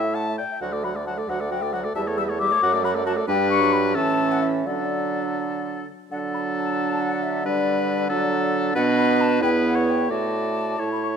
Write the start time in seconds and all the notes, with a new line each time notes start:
Already playing: A2 A3 E4 E5
0.04 E5
0.14 F#5 A5
0.28 E5
0.38 D5 G5
0.51 E5
0.61 D2 F#3 F#4 F#5
0.72 A3 A4 D5
0.84 F#3 F#4 F#5 B5
0.95 A3 A4 D5
1.06 F#3 F#4 F#5 A5
1.17 A3 A4 D5
1.28 D2 F#3 F#4 F#5
1.40 A3 A4 D5
1.50 F#3 F#4 F#5 G5
1.62 A3 A4 D5
1.73 F#3 F#4 F#5
1.84 A3 A4 D5
1.95 E2 G3 G4 E5 A5
2.07 A3 A4 C#5
2.17 G3 G4 E5 E6
2.29 A3 A4 C#5
2.39 G3 G4 E5 D6
2.51 A3 A4 C#5
2.62 F#2 F#3 F#4 F#5
2.73 A3 A4 D5
2.84 F#3 F#4 F#5 B5
2.94 A3 A4 D5
3.05 F#3 F#4 F#5 A5
3.16 A3 A4 D5
3.28 G2 G3 D4 B4 G5
3.50 C#6
3.60 F#3
3.72 B5
3.95 A2 E3 C#4 A4 A5
4.31 F#5
4.42 E5
4.66 D3 F#3 D4 A4 D5
6.11 D3 F#3 D4 A4 F#5
6.34 B5
6.57 A5
7.00 F#5
7.23 E5
7.44 G3 D4 B4 D5
8.10 F#3 D4 A4
8.75 B2 B3 D4 B4 F#5
8.98 B5
9.21 A5
9.42 E2 B3 E4 B4 G5
9.65 F#5
9.76 C#5
9.88 G5
10.10 A2 A3 F#4 D5 A5
10.79 A2 A3 E4 C#5
10.92 B5
11.03 C#6